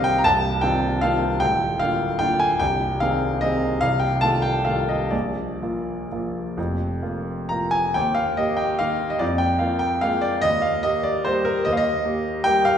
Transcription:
Already playing: C1 C2 D#3 C4 G4 D#5 F5 G5
0.04 G5
0.18 A#5
0.24 C1 C2 A5
0.61 D#3 C4 F4 G5
1.01 D#3 C4 F4 F5
1.40 D1 D2 G5
1.80 D3 A#3 F4 F5
2.19 D3 A#3 F4 G5
2.40 G#5
2.60 C1 C2 G5
3.00 D#3 C4 G#4 F5
3.41 D#3 C4 G#4 D#5
3.81 C1 C2 F5
4.00 G5
4.21 D#3 A3 F4 A5
4.42 G5
4.65 D#3 A3 F4 F5
4.89 D#5
5.11 A#1 A#2 D5
5.62 F3 A#3 F4
6.12 F3 A#3 F4
6.57 F1 F2
7.02 F3 A#3 F4
7.49 F3 A#3 F4 A#5
7.71 G#5
7.94 D#2 G5
8.15 F5
8.37 A#3 G4 D#5
8.57 G5
8.79 D#3 A#3 G4 F5
9.10 D#5
9.19 F2 D5
9.38 G5
9.59 A#3 F4 F5
9.79 G5
10.01 G#3 A#3 F4 F5
10.21 D5
10.42 D#2 D#5
10.62 F5
10.83 A#3 G4 D#5
11.03 D5
11.25 G3 A#3 G4 C5
11.45 A#4
11.65 D#2 D#5
11.73 F5
11.77 D#5
12.05 A#3 G4
12.44 G3 A#3 G4 G5
12.65 F5

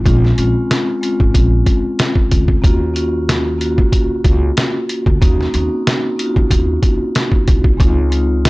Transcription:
0.04 A#1 G#3 C4 C#4 F4, kick, closed hi-hat
0.25 snare
0.36 A#1 G#3 C4 C#4 F4, closed hi-hat
0.71 snare, closed hi-hat
1.01 G#3 C4 C#4 F4, closed hi-hat
1.20 G#1, kick
1.34 A#1, kick, closed hi-hat
1.66 kick, closed hi-hat
1.99 snare, closed hi-hat
2.16 kick
2.31 D2, kick, closed hi-hat
2.48 kick
2.62 D#2 A#3 C#4 F4 F#4, kick, closed hi-hat
2.94 A#3 C#4 F4 F#4, closed hi-hat
3.29 snare, closed hi-hat
3.58 A#3 C#4 F4 F#4, closed hi-hat
3.78 C#2, kick
3.92 kick, closed hi-hat
4.24 C#2, kick, closed hi-hat
4.57 snare, closed hi-hat
4.89 closed hi-hat
5.06 D2, kick
5.21 D#2 A#3 C#4 D#4 F#4, kick, closed hi-hat
5.41 snare
5.52 D#2 A#3 C4 D#4 F#4, closed hi-hat
5.59 C#4
5.87 snare, closed hi-hat
6.16 A#3 C#4 D#4 F4, closed hi-hat
6.26 F#4
6.36 C#2, kick
6.51 D#2, kick, closed hi-hat
6.83 kick, closed hi-hat
7.15 snare, closed hi-hat
7.32 kick
7.48 C2, kick, closed hi-hat
7.64 kick
7.77 C#2 G#3 C4 D#4 F4, kick, closed hi-hat
8.10 G#3 C4 D#4 F4, closed hi-hat
8.45 snare, closed hi-hat

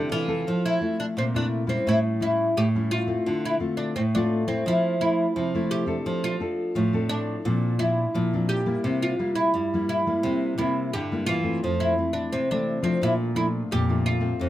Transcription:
Already playing: C3 C4 D4 G4 A4
0.12 E3 F4
0.28 C4 A4
0.47 F3
0.66 E4
0.81 A3 C4 E4
1.00 D4
1.17 A#2 C3 C4
1.34 A3 C4 D4 E4
1.67 G3 C4 C#4 E4
1.87 A2 E4
2.20 G3 C#4 E4
2.57 A2 G4
2.75 G3 C#4 E4
2.91 F4
3.07 A3 C4 F4
3.27 D3
3.45 E4
3.60 A3 C4 F4
3.77 D4
3.96 A2 C4
4.15 A3 C4 D4 F4
4.47 A3 C4 E4
4.67 F3 E4
5.00 A3 C4 E4
5.36 C3 F3
5.54 A3 C4 E4
5.71 G4
5.86 C4 D4 A4
6.06 F3
6.24 F4
6.40 C4 D4 A4
6.75 A2 F3
6.93 C4 D4 A4
7.09 D4
7.45 A#2 F3 C4 D4
7.79 F3 C4 D4 E4
8.14 A#2 F3
8.33 F3 C4 D4
8.49 G4
8.66 G3 A#3 E4
8.85 C3
9.03 F4
9.19 G3 A#3 E4
9.35 E4
9.54 G2 G3
9.74 G3 A#3 E4
9.89 E4
10.06 G3 A#3 E4
10.25 C3
10.58 C3 G3 A#3 E4
10.93 G2 D3 G4
11.12 G3 A#3 E4
11.26 E3 F4
11.43 A3 C4
11.63 F2 F3
11.80 E4
11.98 E3 A3 C4
12.13 D4
12.33 C3 C4
12.51 E3 A3 C4 D4
12.82 F3 A3 C4 D4
13.02 A#2 E4
13.35 F3 A3 D4 E4
13.71 F2 A#2 G4
13.89 F3 A3 D4
14.06 F4
14.20 A3 C4
14.40 F2

